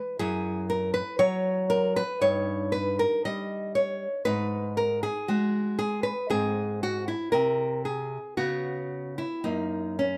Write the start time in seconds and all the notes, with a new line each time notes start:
Already playing: E4 B4
0.19 F#2 E4 G#4
0.70 A#4
0.94 B4
1.19 F#3 C#5
1.70 A#4
1.96 B4
2.21 G2 D#4 C#5
2.72 B4
2.99 A#4
3.25 G3 D#5
3.75 C#5
4.25 G#2 D#4 B4
4.77 A#4
5.03 G#4
5.28 G#3 F#4
5.79 G#4
6.03 B4
6.30 G#2 C4 G#4
6.83 F#4
7.08 E4
7.32 C3 A#4
7.85 G#4
8.37 C#3 B3 F#4
9.18 E4
9.44 F#2 A#3 D#4
9.99 C#4